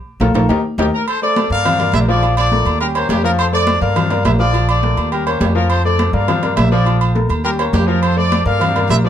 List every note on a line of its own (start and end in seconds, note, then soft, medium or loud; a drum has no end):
0.20 0.31 A#1 loud
0.20 0.30 F4 loud
0.20 0.30 A4 loud
0.20 0.30 A#4 medium
0.20 high conga loud
0.20 high timbale loud
0.34 0.45 A#1 loud
0.34 0.44 F4 medium
0.34 0.44 A4 loud
0.34 0.44 A#4 loud
0.34 high conga loud
0.34 high timbale loud
0.49 0.60 D#2 loud
0.49 0.59 D#4 loud
0.49 0.59 G4 loud
0.49 0.59 A#4 loud
0.49 high conga loud
0.49 high timbale loud
0.78 0.89 D#2 loud
0.78 0.88 D#4 loud
0.78 0.88 G4 loud
0.78 0.86 G4 medium
0.78 0.88 A#4 medium
0.78 high conga loud
0.78 high timbale loud
0.93 1.07 A#4 loud
1.07 1.21 A4 medium
1.07 1.21 C5 loud
1.07 high conga soft
1.07 low agogo loud
1.22 1.46 A3 medium
1.22 1.62 A4 medium
1.22 1.46 A4 medium
1.22 1.46 C5 medium
1.22 1.49 D5 loud
1.22 high conga soft
1.36 high conga loud
1.36 low timbale medium
1.36 low agogo medium
1.50 1.91 G2 loud
1.50 1.63 A#3 medium
1.50 1.63 A#4 medium
1.50 2.05 A#4 medium
1.50 2.05 D5 medium
1.50 1.63 D5 medium
1.50 1.91 F5 loud
1.50 high conga soft
1.65 1.77 F3 medium
1.65 1.77 F4 medium
1.65 1.77 F5 medium
1.65 high conga soft
1.65 low conga medium
1.65 low agogo loud
1.79 2.03 A#3 medium
1.79 2.03 A#4 medium
1.79 2.03 D5 medium
1.79 high conga soft
1.79 low conga medium
1.79 low agogo medium
1.93 2.60 A#1 loud
1.93 2.01 E5 loud
1.93 high conga loud
1.93 low timbale medium
1.93 low agogo loud
2.08 2.20 F3 loud
2.08 2.20 F4 loud
2.08 2.36 F4 medium
2.08 2.36 A4 medium
2.08 2.36 D5 loud
2.08 2.21 F5 loud
2.08 high conga soft
2.22 2.46 F3 medium
2.22 2.46 F4 medium
2.22 2.47 F5 medium
2.22 low agogo medium
2.37 2.78 F4 medium
2.37 2.78 A4 medium
2.37 2.78 D5 loud
2.37 high conga soft
2.37 low agogo loud
2.51 2.75 A3 medium
2.51 2.75 A4 medium
2.51 2.76 A#4 medium
2.51 high conga medium
2.51 low timbale medium
2.65 3.06 D#2 loud
2.65 low agogo medium
2.80 2.92 G3 medium
2.80 3.35 C#4 medium
2.80 2.93 G4 medium
2.80 3.09 G4 medium
2.80 2.88 A#4 loud
2.80 2.93 G5 medium
2.80 high conga soft
2.80 low agogo loud
2.95 3.19 A#3 medium
2.95 3.19 A#4 medium
2.95 3.09 C5 loud
2.95 3.19 C#5 medium
2.95 high conga soft
2.95 low agogo loud
3.09 3.76 F2 loud
3.09 3.23 G4 medium
3.09 high conga medium
3.09 low timbale loud
3.09 low agogo medium
3.24 3.48 F3 loud
3.24 3.48 F4 loud
3.24 3.31 A#4 loud
3.24 3.48 F5 loud
3.39 3.53 A4 medium
3.39 3.45 C5 loud
3.39 low agogo loud
3.53 3.76 A3 medium
3.53 3.76 A4 medium
3.53 3.94 A4 medium
3.53 3.77 C5 medium
3.53 3.80 D5 loud
3.53 high conga soft
3.67 high conga loud
3.67 low timbale medium
3.67 low agogo medium
3.81 4.22 G2 loud
3.81 3.93 A#3 medium
3.81 3.93 A#4 medium
3.81 4.36 A#4 medium
3.81 3.94 D5 medium
3.81 4.36 D5 medium
3.81 4.22 F5 loud
3.81 high conga soft
3.96 4.08 F3 medium
3.96 4.08 F4 medium
3.96 4.08 F5 medium
3.96 high conga soft
3.96 low conga medium
3.96 low agogo loud
4.10 4.34 A#3 medium
4.10 4.34 A#4 medium
4.10 4.34 D5 medium
4.10 high conga soft
4.10 low conga medium
4.10 low agogo medium
4.25 4.92 A#1 loud
4.25 4.32 E5 loud
4.25 high conga loud
4.25 low timbale medium
4.25 low agogo loud
4.39 4.51 F3 loud
4.39 4.52 F4 loud
4.39 4.69 F4 medium
4.39 4.68 A4 medium
4.39 4.67 D5 loud
4.39 4.52 F5 loud
4.39 high conga soft
4.53 4.78 F3 medium
4.53 4.78 F4 medium
4.53 4.78 F5 medium
4.53 high conga soft
4.53 low agogo medium
4.68 5.10 F4 medium
4.68 5.10 A4 medium
4.68 5.09 D5 loud
4.68 high conga soft
4.68 low agogo loud
4.83 5.07 A3 medium
4.83 5.07 A4 medium
4.83 5.07 A#4 medium
4.83 high conga medium
4.83 low timbale medium
4.97 5.38 D#2 loud
4.97 low agogo medium
5.12 5.24 G3 medium
5.12 5.67 C#4 medium
5.12 5.24 G4 medium
5.12 5.40 G4 medium
5.12 5.26 A#4 medium
5.12 5.24 G5 medium
5.12 high conga soft
5.12 low agogo medium
5.26 5.50 A#3 medium
5.26 5.50 A#4 medium
5.26 5.40 C5 medium
5.26 5.50 C#5 medium
5.26 high conga soft
5.26 low agogo loud
5.40 6.08 F2 loud
5.40 5.55 G4 medium
5.40 high conga loud
5.40 low timbale medium
5.40 low agogo medium
5.55 5.79 F3 loud
5.55 5.79 F4 loud
5.55 5.69 A#4 medium
5.55 5.79 F5 loud
5.70 5.83 A4 medium
5.70 5.84 C5 loud
5.70 low agogo loud
5.84 6.09 A3 medium
5.84 6.25 A4 medium
5.84 6.09 A4 medium
5.84 6.09 C5 medium
5.84 6.12 D5 loud
5.84 high conga soft
5.99 high conga loud
5.99 low timbale medium
5.99 low agogo medium
6.13 6.54 G2 loud
6.13 6.25 A#3 medium
6.13 6.26 A#4 medium
6.13 6.68 A#4 medium
6.13 6.26 D5 medium
6.13 6.68 D5 medium
6.13 6.57 F5 medium
6.13 high conga soft
6.28 6.40 F3 medium
6.28 6.40 F4 medium
6.28 6.41 F5 medium
6.28 high conga soft
6.28 low conga medium
6.28 low agogo loud
6.42 6.66 A#3 medium
6.42 6.67 A#4 medium
6.42 6.67 D5 medium
6.42 high conga soft
6.42 low conga medium
6.42 low agogo medium
6.56 7.24 A#1 loud
6.56 6.70 E5 loud
6.56 high conga medium
6.56 low timbale medium
6.56 low agogo loud
6.72 6.84 F3 loud
6.72 6.84 F4 loud
6.72 7.26 F4 medium
6.72 7.26 A4 medium
6.72 6.99 D5 medium
6.72 6.84 F5 loud
6.72 high conga soft
6.86 7.10 F3 medium
6.86 7.10 F4 medium
6.86 7.10 F5 medium
6.86 high conga soft
6.86 low agogo medium
7.01 high conga soft
7.01 low agogo loud
7.15 7.39 A3 medium
7.15 7.39 A4 medium
7.15 7.39 A#4 medium
7.15 high conga medium
7.15 low timbale medium
7.29 7.70 D#2 loud
7.29 low agogo loud
7.44 7.56 G3 medium
7.44 7.99 C#4 medium
7.44 7.56 G4 medium
7.44 7.72 G4 medium
7.44 7.51 A#4 loud
7.44 7.57 G5 medium
7.44 high conga soft
7.44 low agogo medium
7.59 7.83 A#3 medium
7.59 7.83 A#4 medium
7.59 7.65 C5 loud
7.59 7.83 C#5 medium
7.59 high conga soft
7.59 low agogo loud
7.73 8.41 F2 loud
7.73 7.87 G4 loud
7.73 high conga medium
7.73 low timbale loud
7.73 low agogo medium
7.88 8.12 F3 loud
7.88 8.12 F4 medium
7.88 8.02 A#4 medium
7.88 8.12 F5 loud
8.02 8.17 A4 medium
8.02 8.17 C5 loud
8.02 low agogo loud
8.16 8.41 A3 medium
8.16 8.41 A4 medium
8.16 8.58 A4 medium
8.16 8.41 C5 medium
8.16 8.46 D5 loud
8.16 high conga soft
8.32 high conga loud
8.32 low timbale medium
8.32 low agogo medium
8.45 8.86 G2 loud
8.45 8.58 A#3 medium
8.45 8.58 A#4 medium
8.45 9.01 A#4 medium
8.45 8.58 D5 medium
8.45 9.01 D5 medium
8.45 8.87 F5 loud
8.45 high conga soft
8.60 8.72 F3 medium
8.60 8.72 F4 medium
8.60 8.72 F5 medium
8.60 high conga soft
8.60 low conga medium
8.60 low agogo loud
8.75 8.99 A#3 medium
8.75 8.99 A#4 medium
8.75 8.99 D5 medium
8.75 high conga soft
8.75 low conga medium
8.75 low agogo medium
8.89 9.09 A#1 loud
8.89 8.97 E5 loud
8.89 high conga loud
8.89 low timbale medium
8.89 low agogo loud
9.04 9.09 F3 loud
9.04 9.09 F4 loud
9.04 9.09 F4 medium
9.04 9.09 A4 medium
9.04 9.09 D5 loud
9.04 9.09 F5 loud